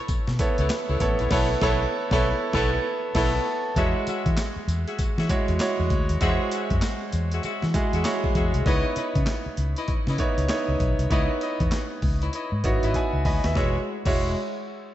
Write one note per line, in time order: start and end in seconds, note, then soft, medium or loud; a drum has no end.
0.00 0.39 B3 medium
0.00 0.39 E4 medium
0.00 0.40 A4 medium
0.00 0.41 C#5 loud
0.08 muted fingered electric bass stroke medium
0.08 kick loud
0.08 closed hi-hat medium
0.08 tambourine medium
0.28 0.37 B2 loud
0.28 snare medium
0.39 0.84 B3 medium
0.39 0.84 E4 medium
0.39 0.84 A4 medium
0.39 0.85 C#5 medium
0.39 kick loud
0.39 closed hi-hat medium
0.39 tambourine medium
0.58 0.68 C#2 medium
0.58 0.74 E4 medium
0.58 0.74 A4 medium
0.58 0.74 B4 medium
0.58 0.74 C#5 medium
0.58 closed hi-hat medium
0.70 snare loud
0.70 clap medium
0.70 closed hi-hat medium
0.70 tambourine loud
0.89 0.99 C#2 medium
0.89 1.04 E4 medium
0.89 1.04 A4 medium
0.89 1.04 B4 medium
0.89 1.05 C#5 medium
1.00 1.16 A1 medium
1.00 1.24 B3 medium
1.00 1.24 E4 medium
1.00 1.24 A4 medium
1.00 1.24 C#5 medium
1.00 kick medium
1.00 closed hi-hat medium
1.19 1.29 A#1 medium
1.19 1.29 E4 medium
1.19 1.29 A4 medium
1.19 1.30 B4 medium
1.19 1.30 C#5 medium
1.19 closed hi-hat medium
1.30 1.53 B1 loud
1.30 1.53 B3 medium
1.30 1.47 E4 loud
1.30 1.54 E4 loud
1.30 1.47 A4 loud
1.30 1.54 A4 loud
1.30 1.48 B4 loud
1.30 1.48 C#5 loud
1.30 1.54 C#5 loud
1.30 kick loud
1.30 snare loud
1.30 crash medium
1.61 1.84 B1 loud
1.61 1.84 B3 loud
1.61 1.78 E4 loud
1.61 1.84 E4 loud
1.61 1.78 A4 loud
1.61 1.85 A4 loud
1.61 1.78 B4 loud
1.61 1.78 C#5 loud
1.61 1.85 C#5 loud
1.61 kick loud
1.61 snare loud
2.11 2.31 B1 loud
2.11 2.31 B3 loud
2.11 2.26 E4 loud
2.11 2.32 E4 loud
2.11 2.26 A4 loud
2.11 2.32 A4 loud
2.11 2.26 B4 loud
2.11 2.26 C#5 loud
2.11 2.32 C#5 loud
2.11 kick loud
2.11 snare loud
2.53 2.76 B1 loud
2.53 2.76 B3 loud
2.53 2.70 E4 loud
2.53 2.76 E4 loud
2.53 2.70 A4 loud
2.53 2.76 A4 loud
2.53 2.70 B4 loud
2.53 2.71 C#5 loud
2.53 kick loud
2.53 snare loud
3.15 3.37 B1 loud
3.15 3.37 B3 loud
3.15 3.32 E4 loud
3.15 3.37 E4 loud
3.15 3.32 A4 loud
3.15 3.37 A4 loud
3.15 3.32 B4 loud
3.15 3.32 C#5 loud
3.15 kick loud
3.15 snare loud
3.15 crash medium
3.76 3.92 E2 loud
3.76 4.62 G#3 medium
3.76 4.62 E4 medium
3.76 3.98 F#4 loud
3.76 4.63 F#4 medium
3.76 3.98 G#4 medium
3.76 3.98 C#5 medium
3.76 4.63 C#5 medium
3.76 3.98 E5 loud
3.76 kick loud
3.76 closed hi-hat medium
3.76 tambourine medium
4.07 4.28 F#4 medium
4.07 4.28 G#4 medium
4.07 4.29 C#5 medium
4.07 4.29 E5 medium
4.07 muted fingered electric bass stroke medium
4.07 closed hi-hat medium
4.07 tambourine medium
4.26 4.35 E3 loud
4.26 kick loud
4.26 closed hi-hat soft
4.37 snare loud
4.37 clap medium
4.37 closed hi-hat medium
4.37 tambourine loud
4.56 muted fingered electric bass stroke soft
4.68 4.84 E2 medium
4.68 closed hi-hat medium
4.68 tambourine medium
4.87 5.03 F#4 medium
4.87 5.03 G#4 medium
4.87 5.03 C#5 medium
4.87 5.03 E5 medium
4.87 closed hi-hat medium
4.99 muted fingered electric bass stroke soft
4.99 kick loud
4.99 closed hi-hat medium
4.99 tambourine medium
5.18 5.27 E3 loud
5.18 5.33 F#4 medium
5.18 5.33 G#4 medium
5.18 5.33 C#5 medium
5.18 5.34 E5 medium
5.18 snare medium
5.29 5.53 G#3 medium
5.29 5.53 E4 medium
5.29 5.53 F#4 medium
5.29 5.53 C#5 medium
5.29 kick loud
5.29 closed hi-hat medium
5.29 tambourine medium
5.48 5.58 E2 medium
5.48 closed hi-hat medium
5.60 6.05 G#3 medium
5.60 6.05 E4 medium
5.60 6.05 F#4 medium
5.60 6.05 C#5 loud
5.60 snare loud
5.60 clap medium
5.60 closed hi-hat medium
5.60 tambourine loud
5.79 5.89 E2 medium
5.90 6.06 D2 medium
5.90 kick loud
5.90 closed hi-hat medium
6.09 6.19 D#2 medium
6.09 closed hi-hat medium
6.21 6.37 E2 loud
6.21 7.07 G#3 medium
6.21 7.07 E4 medium
6.21 6.43 F#4 loud
6.21 7.07 F#4 medium
6.21 6.43 G#4 medium
6.21 6.30 C5 medium
6.21 6.43 C#5 medium
6.21 6.43 E5 loud
6.21 kick loud
6.21 closed hi-hat medium
6.21 tambourine medium
6.29 7.11 C#5 loud
6.51 6.73 F#4 medium
6.51 6.73 G#4 medium
6.51 6.73 C#5 medium
6.51 6.73 E5 medium
6.51 closed hi-hat medium
6.51 tambourine medium
6.70 6.80 F#2 loud
6.70 kick loud
6.70 closed hi-hat soft
6.82 snare loud
6.82 clap medium
6.82 closed hi-hat medium
6.82 tambourine loud
7.12 7.38 E2 medium
7.12 closed hi-hat medium
7.12 tambourine medium
7.32 7.43 F#4 medium
7.32 7.43 G#4 medium
7.32 7.43 C#5 medium
7.32 7.43 E5 medium
7.32 closed hi-hat medium
7.43 7.65 F#4 medium
7.43 7.65 G#4 medium
7.43 7.65 C#5 medium
7.43 7.66 E5 medium
7.43 muted fingered electric bass stroke soft
7.43 closed hi-hat medium
7.43 tambourine medium
7.62 7.72 E3 medium
7.62 snare medium
7.74 7.97 G#3 medium
7.74 7.98 E4 medium
7.74 7.98 F#4 medium
7.74 7.98 G#4 medium
7.74 kick medium
7.74 closed hi-hat medium
7.74 tambourine medium
7.93 8.03 E2 medium
7.93 8.09 F#4 medium
7.93 8.09 G#4 medium
7.93 8.09 C#5 medium
7.93 8.09 E5 medium
7.93 closed hi-hat medium
8.05 8.49 G#3 medium
8.05 8.49 E4 medium
8.05 8.50 F#4 medium
8.05 8.50 C#5 medium
8.05 snare loud
8.05 clap medium
8.05 closed hi-hat medium
8.05 tambourine loud
8.24 kick loud
8.35 8.51 E2 medium
8.35 8.57 F#4 medium
8.35 8.57 G#4 medium
8.35 8.57 C#5 medium
8.35 8.57 E5 medium
8.35 kick loud
8.35 closed hi-hat medium
8.54 8.64 C2 medium
8.54 closed hi-hat medium
8.66 8.82 C#2 loud
8.66 9.52 B3 medium
8.66 9.52 D#4 medium
8.66 8.87 E4 medium
8.66 9.52 E4 medium
8.66 8.88 B4 medium
8.66 8.88 C#5 medium
8.66 9.52 C#5 medium
8.66 8.88 D#5 loud
8.66 kick loud
8.66 closed hi-hat medium
8.96 9.18 E4 medium
8.96 9.18 B4 medium
8.96 9.18 C#5 medium
8.96 9.18 D#5 medium
8.96 muted fingered electric bass stroke soft
8.96 closed hi-hat medium
9.15 9.25 C#3 loud
9.15 kick loud
9.15 closed hi-hat medium
9.27 snare loud
9.27 clap medium
9.27 closed hi-hat medium
9.46 muted fingered electric bass stroke soft
9.57 9.74 C#2 medium
9.57 closed hi-hat medium
9.76 9.92 E4 medium
9.76 9.92 B4 medium
9.76 9.92 C#5 medium
9.76 9.92 D#5 medium
9.76 closed hi-hat medium
9.88 muted fingered electric bass stroke soft
9.88 kick medium
9.88 closed hi-hat medium
10.07 10.17 C#3 loud
10.07 10.23 E4 medium
10.07 10.23 B4 medium
10.07 10.23 C#5 medium
10.07 10.23 D#5 medium
10.07 snare medium
10.18 10.42 B3 medium
10.18 10.42 D#4 medium
10.18 10.42 E4 medium
10.18 10.43 C#5 medium
10.18 kick medium
10.18 closed hi-hat medium
10.38 10.47 C#2 medium
10.38 closed hi-hat medium
10.49 10.94 B3 medium
10.49 10.94 D#4 medium
10.49 10.94 E4 medium
10.49 10.95 C#5 medium
10.49 snare loud
10.49 clap medium
10.49 closed hi-hat medium
10.68 10.78 C#2 medium
10.80 10.96 B1 medium
10.80 kick loud
10.80 closed hi-hat medium
10.99 11.08 C2 medium
10.99 closed hi-hat medium
11.10 11.27 C#2 loud
11.10 11.96 B3 medium
11.10 11.97 D#4 medium
11.10 11.32 E4 loud
11.10 11.97 E4 medium
11.10 11.32 B4 medium
11.10 11.32 C#5 medium
11.10 11.97 C#5 medium
11.10 11.33 D#5 loud
11.10 kick loud
11.10 closed hi-hat medium
11.41 11.63 E4 medium
11.41 11.63 B4 medium
11.41 11.63 C#5 medium
11.41 11.63 D#5 medium
11.41 closed hi-hat medium
11.60 11.70 E2 medium
11.60 kick loud
11.60 closed hi-hat soft
11.72 snare loud
11.72 clap medium
11.72 closed hi-hat medium
12.02 12.28 C#2 medium
12.02 kick medium
12.02 open hi-hat medium
12.21 12.32 E4 medium
12.21 12.32 B4 medium
12.21 12.32 C#5 medium
12.21 12.32 D#5 medium
12.21 closed hi-hat medium
12.33 12.55 E4 medium
12.33 12.55 B4 medium
12.33 12.55 C#5 medium
12.33 12.55 D#5 medium
12.33 closed hi-hat medium
12.52 12.62 G#2 medium
12.64 12.80 G#1 medium
12.64 12.87 B3 medium
12.64 12.88 D#4 medium
12.64 12.88 E4 medium
12.64 12.88 F#4 medium
12.64 12.82 C#5 medium
12.64 kick loud
12.64 closed hi-hat medium
12.83 12.92 G#1 medium
12.83 12.98 E4 medium
12.83 12.99 B4 medium
12.83 12.99 C#5 medium
12.83 12.99 D#5 medium
12.83 12.94 E5 medium
12.83 closed hi-hat medium
12.94 13.25 F#5 medium
12.94 13.24 G#5 medium
12.94 13.24 B5 medium
12.94 kick medium
12.94 closed hi-hat medium
13.13 13.23 C#2 medium
13.25 13.41 D2 medium
13.25 13.46 E4 medium
13.25 13.47 B4 medium
13.25 13.47 C#5 medium
13.25 13.47 D#5 medium
13.25 13.44 D#5 medium
13.25 13.44 G#5 medium
13.25 13.54 B5 medium
13.25 kick medium
13.25 open hi-hat medium
13.44 13.54 D#2 medium
13.44 13.74 B4 medium
13.44 13.74 E5 medium
13.44 snare medium
13.44 closed hi-hat medium
13.55 13.76 E1 loud
13.55 13.76 G#3 medium
13.55 13.76 E4 medium
13.55 13.75 F#4 medium
13.55 13.76 F#4 medium
13.55 13.75 G#4 medium
13.55 13.76 C#5 medium
13.55 13.76 E5 loud
13.55 kick loud
13.55 snare medium
14.05 14.34 E1 loud
14.05 14.34 G#3 medium
14.05 14.34 E4 medium
14.05 14.27 F#4 medium
14.05 14.35 F#4 medium
14.05 14.27 G#4 medium
14.05 14.27 C#5 medium
14.05 14.34 C#5 medium
14.05 14.27 E5 medium
14.05 kick loud
14.05 crash medium